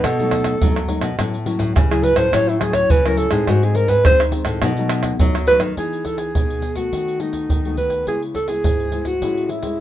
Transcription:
0.04 nylon-string guitar B2, alto saxophone A4, pandeiro, tamborim, shaker, surdo
0.19 nylon-string guitar F#3 A3 D#4, pandeiro, shaker
0.31 pandeiro, tamborim, shaker, surdo
0.44 pandeiro, tamborim, shaker, surdo
0.61 nylon-string guitar F#2 F#3 A3 D#4, pandeiro, shaker, surdo
0.76 pandeiro, tamborim, shaker
0.88 nylon-string guitar F#3 A3 D#4, pandeiro
1.01 nylon-string guitar B2, pandeiro, tamborim, shaker, surdo
1.18 nylon-string guitar A2 F#3 C#4 E4, pandeiro, tamborim, shaker, surdo
1.34 pandeiro, shaker
1.46 nylon-string guitar F#3 C#4 E4, pandeiro, shaker
1.59 nylon-string guitar A2, pandeiro, shaker, surdo
1.76 nylon-string guitar A2 C#3, pandeiro, tamborim, shaker, surdo
1.91 nylon-string guitar F#3 C#4 E4, alto saxophone G#4, pandeiro, tamborim, shaker
2.03 alto saxophone B4, pandeiro, shaker
2.16 nylon-string guitar A2 F#3 C#4 E4, alto saxophone C5, pandeiro, tamborim, shaker, surdo
2.32 nylon-string guitar A2 F#3 C#4 E4, alto saxophone C#5, pandeiro, tamborim, shaker, surdo
2.49 alto saxophone E4, pandeiro, shaker
2.60 nylon-string guitar F#3 C#4 E4, alto saxophone G#4, pandeiro, tamborim, shaker, surdo
2.73 alto saxophone C#5, pandeiro, tamborim, shaker, surdo
2.90 nylon-string guitar A2 C#3, alto saxophone B4, pandeiro, shaker, surdo
3.06 nylon-string guitar F#3 C#4 E4, alto saxophone A#4, pandeiro, tamborim, shaker
3.17 alto saxophone A4, pandeiro
3.31 nylon-string guitar A2 G#3 C4 D#4, alto saxophone G#4, pandeiro, tamborim, shaker, surdo
3.47 nylon-string guitar G#2, alto saxophone F#4, pandeiro, tamborim, shaker, surdo
3.62 nylon-string guitar G#3 C4 D#4, alto saxophone G#4, pandeiro, shaker
3.75 alto saxophone A#4, pandeiro, shaker
3.88 nylon-string guitar G#2, alto saxophone B4, pandeiro, shaker, surdo
4.05 nylon-string guitar D#3 G#3 C4 D#4, alto saxophone C5, pandeiro, tamborim, shaker, surdo
4.20 pandeiro, tamborim, shaker
4.32 nylon-string guitar G#3 C4 D#4, pandeiro
4.45 nylon-string guitar A2, pandeiro, tamborim, shaker, surdo
4.62 nylon-string guitar B2 F#3 A3 D#4, pandeiro, tamborim, shaker, surdo
4.77 nylon-string guitar F#3 A3 D#4, pandeiro, shaker
4.89 pandeiro, tamborim, shaker
5.03 pandeiro, tamborim, shaker, surdo
5.19 nylon-string guitar F#2 F#3 A3 D#4, pandeiro, shaker, surdo
5.35 pandeiro, tamborim, shaker
5.47 nylon-string guitar F#3 A3 D#4, alto saxophone B4, pandeiro, shaker
5.60 nylon-string guitar D#3, pandeiro, tamborim, shaker, surdo
5.77 nylon-string guitar E3 B3 D#4 G#4, alto saxophone G#4, pandeiro, shaker, surdo
5.93 pandeiro, shaker
6.05 alto saxophone A4, pandeiro, shaker, surdo
6.18 alto saxophone G#4, pandeiro, shaker
6.35 nylon-string guitar B2 B3 D#4 G#4, pandeiro, shaker, surdo
6.50 pandeiro, shaker
6.62 pandeiro, shaker
6.76 nylon-string guitar A3 B3 F#4, alto saxophone F#4, pandeiro, shaker, surdo
6.93 nylon-string guitar D#3, pandeiro, shaker, surdo
7.08 pandeiro, shaker
7.20 nylon-string guitar A3 B3 F#4, alto saxophone D#4, pandeiro, shaker
7.33 pandeiro, shaker, surdo
7.50 nylon-string guitar D#3, pandeiro, shaker, surdo
7.65 nylon-string guitar A3 B3 F#4, pandeiro, shaker
7.77 nylon-string guitar A3 B3 F#4, alto saxophone B4, pandeiro, shaker, surdo
7.90 pandeiro, shaker, surdo
8.07 nylon-string guitar C#3 G#3 B3 E4, alto saxophone G#4, pandeiro, shaker, surdo
8.22 pandeiro, shaker
8.35 alto saxophone A4, pandeiro, surdo
8.48 nylon-string guitar G#3 B3 E4, alto saxophone G#4, pandeiro, shaker
8.64 nylon-string guitar G#2, pandeiro, shaker, surdo
8.80 pandeiro, shaker
8.92 nylon-string guitar G#3 B3 E4, pandeiro, shaker
9.02 alto saxophone G#4, pandeiro, shaker, surdo
9.07 alto saxophone F#4
9.22 nylon-string guitar A2 G#3 C#4 E4, pandeiro, shaker, surdo
9.37 pandeiro, shaker
9.45 alto saxophone F#4
9.49 alto saxophone E4, pandeiro, shaker
9.63 nylon-string guitar G#3 C#4 E4, pandeiro, shaker, surdo

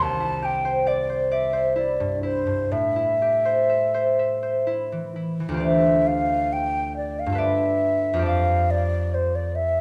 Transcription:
0.00 harp C2, flute A5
0.20 harp E4
0.42 harp G4, flute G5
0.65 harp C5
0.87 harp D5, flute D5
1.10 harp C5
1.31 harp D5, flute E5
1.53 harp C5
1.76 harp E4, flute D5
2.00 harp G2
2.23 harp E4, flute C5
2.47 harp G2
2.71 harp A2, flute E5
2.96 harp E4
3.22 harp G4
3.45 harp C5
3.69 harp E5
3.94 harp C5
4.19 harp E5
4.43 harp C5
4.67 harp E4
4.92 harp E3
5.16 harp E4
5.40 harp E3
5.49 harp D2 F4
5.54 harp G4 C5
5.60 harp D5, flute E5
6.06 flute F5
6.52 flute G5
6.96 flute D5
7.19 flute F5
7.26 harp G2 F4
7.32 harp A4 B4
7.38 harp D5, flute E5
8.13 harp F2 F4
8.19 harp G4 A4
8.26 harp D5, flute F5
8.70 flute D5
9.14 flute C5
9.35 flute D5
9.55 flute E5

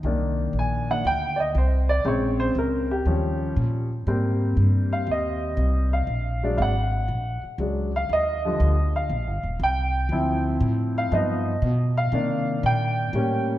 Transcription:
0.03 upright bass C2, upright piano D#3 A#3 D4
0.53 upright bass A#1
0.59 upright piano G#5
0.90 upright piano D#3 A#3 D4 F#5
1.05 upright bass D2, upright piano G5
1.36 upright piano D5 D#5
1.55 upright bass C2, upright piano C5
1.89 upright piano D5
2.04 upright bass A#1, upright piano C#3 G#3 C4 C#5
2.40 upright piano C5
2.55 upright bass C#2, upright piano A#4
2.91 upright piano G4
3.06 upright bass D#2, upright piano F3 G3 C#4
3.56 upright bass A#2
4.07 upright bass G#2, upright piano G3 A#3 C4
4.57 upright bass G2
4.93 upright piano F5
5.07 upright bass D#2
5.11 upright piano D#5
5.57 upright bass C2
5.93 upright piano F5
6.07 upright bass A#1
6.43 upright piano F#3 G#3 D4
6.58 upright bass G#1, upright piano F5
6.62 upright piano F#5
7.08 upright bass A#1
7.43 muted upright bass stroke
7.58 upright bass C#2, upright piano F#3 G#3 D4
7.96 upright piano F5
8.09 upright bass D#2, upright piano D#5
8.45 upright piano D3 F3 G3
8.60 upright bass D2
8.96 upright piano F5
9.09 upright bass A#1
9.27 upright bass G1
9.43 upright bass D#1
9.59 upright bass C2, upright piano G5
10.09 upright bass D2, upright piano F3 C4 E4
10.60 upright bass A2
10.98 upright piano F5
11.11 upright bass G2, upright piano F3 B3 D#4 D#5
11.62 upright bass B2
11.97 upright piano F5
12.12 upright bass C3, upright piano D#3 A#3 D4
12.63 upright bass A#2, upright piano G5
13.13 upright bass A2, upright piano G3 A#3 C#4

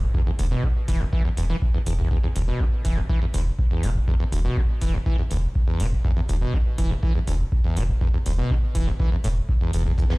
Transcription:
0.02 kick
0.14 acid bass E2, kick
0.27 acid bass E2
0.39 sub bass E1, acid bass D2, open hi-hat
0.51 acid bass B2
0.63 acid bass E3, kick
0.88 sub bass E1, acid bass E3, kick, open hi-hat
1.00 acid bass E1
1.13 acid bass E3, kick
1.25 acid bass E2
1.37 sub bass E1, acid bass E2, open hi-hat
1.50 acid bass E3
1.62 kick
1.74 acid bass E2
1.86 sub bass E1, acid bass E2, open hi-hat
1.99 acid bass E2, kick
2.11 acid bass E2, kick
2.23 acid bass E2
2.36 sub bass E1, acid bass D2, open hi-hat
2.48 acid bass B2
2.60 acid bass E3, kick
2.85 sub bass E1, acid bass E3, kick, open hi-hat
2.97 acid bass E1
3.09 acid bass E3, kick
3.22 acid bass E2
3.34 sub bass E1, acid bass D2, open hi-hat
3.59 kick
3.71 acid bass E2
3.83 sub bass E1, acid bass B2, open hi-hat
3.96 kick
4.08 acid bass E2, kick
4.20 acid bass E2
4.32 sub bass E1, acid bass D2, open hi-hat
4.45 acid bass B2
4.57 acid bass E3, kick
4.81 sub bass E1, acid bass E3, kick, open hi-hat
4.94 acid bass E1
5.06 acid bass E3, kick
5.18 acid bass E2
5.31 sub bass E1, acid bass D2, open hi-hat
5.55 kick
5.68 acid bass E2
5.80 sub bass E1, acid bass B2, open hi-hat
5.92 kick
6.04 acid bass E2, kick
6.17 acid bass E2
6.29 sub bass E1, acid bass D2, open hi-hat
6.41 acid bass B2
6.54 acid bass E3, kick
6.78 sub bass E1, acid bass E3, kick, open hi-hat
6.91 acid bass E1
7.03 acid bass E3, kick
7.15 acid bass E2
7.27 sub bass E1, acid bass D2, open hi-hat
7.52 kick
7.64 acid bass E2
7.77 sub bass E1, acid bass B2, open hi-hat
7.89 kick
8.01 acid bass E2, kick
8.14 acid bass E2
8.26 sub bass E1, acid bass D2, open hi-hat
8.38 acid bass B2
8.50 acid bass E3, kick
8.75 sub bass E1, acid bass E3, kick, open hi-hat
8.87 acid bass E1
9.00 acid bass E3, kick
9.12 acid bass E2
9.24 sub bass E1, acid bass A2, open hi-hat
9.49 kick
9.61 acid bass E2
9.73 sub bass E1, acid bass E2, open hi-hat
9.86 acid bass E2, kick
9.98 acid bass E2, analog synth pad B3 B4, kick, shaker
10.10 acid bass E2, snare

